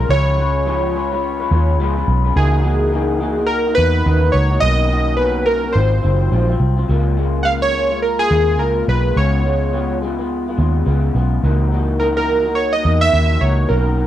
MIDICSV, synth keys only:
0, 0, Header, 1, 2, 480
1, 0, Start_track
1, 0, Tempo, 567054
1, 80, Time_signature, 4, 2, 24, 8
1, 11909, End_track
2, 0, Start_track
2, 0, Title_t, "Synth keys"
2, 0, Program_c, 0, 88
2, 0, Note_on_c, 0, 70, 99
2, 88, Note_on_c, 0, 73, 94
2, 100, Note_off_c, 0, 70, 0
2, 1490, Note_off_c, 0, 73, 0
2, 2003, Note_on_c, 0, 68, 80
2, 2932, Note_on_c, 0, 70, 90
2, 2990, Note_off_c, 0, 68, 0
2, 3168, Note_off_c, 0, 70, 0
2, 3172, Note_on_c, 0, 71, 110
2, 3656, Note_on_c, 0, 73, 90
2, 3681, Note_off_c, 0, 71, 0
2, 3897, Note_on_c, 0, 75, 113
2, 3915, Note_off_c, 0, 73, 0
2, 4354, Note_off_c, 0, 75, 0
2, 4373, Note_on_c, 0, 71, 83
2, 4619, Note_on_c, 0, 70, 86
2, 4634, Note_off_c, 0, 71, 0
2, 4846, Note_on_c, 0, 72, 74
2, 4877, Note_off_c, 0, 70, 0
2, 5549, Note_off_c, 0, 72, 0
2, 6289, Note_on_c, 0, 78, 75
2, 6307, Note_on_c, 0, 77, 91
2, 6316, Note_off_c, 0, 78, 0
2, 6374, Note_off_c, 0, 77, 0
2, 6451, Note_on_c, 0, 73, 90
2, 6769, Note_off_c, 0, 73, 0
2, 6791, Note_on_c, 0, 70, 81
2, 6934, Note_on_c, 0, 68, 91
2, 6944, Note_off_c, 0, 70, 0
2, 7272, Note_on_c, 0, 70, 80
2, 7285, Note_off_c, 0, 68, 0
2, 7499, Note_off_c, 0, 70, 0
2, 7524, Note_on_c, 0, 71, 83
2, 7764, Note_on_c, 0, 73, 81
2, 7768, Note_off_c, 0, 71, 0
2, 8448, Note_off_c, 0, 73, 0
2, 10154, Note_on_c, 0, 70, 74
2, 10220, Note_off_c, 0, 70, 0
2, 10299, Note_on_c, 0, 70, 86
2, 10625, Note_on_c, 0, 73, 89
2, 10648, Note_off_c, 0, 70, 0
2, 10772, Note_on_c, 0, 75, 99
2, 10781, Note_off_c, 0, 73, 0
2, 11014, Note_on_c, 0, 76, 105
2, 11025, Note_off_c, 0, 75, 0
2, 11350, Note_on_c, 0, 73, 80
2, 11365, Note_off_c, 0, 76, 0
2, 11585, Note_on_c, 0, 70, 69
2, 11602, Note_off_c, 0, 73, 0
2, 11909, Note_off_c, 0, 70, 0
2, 11909, End_track
0, 0, End_of_file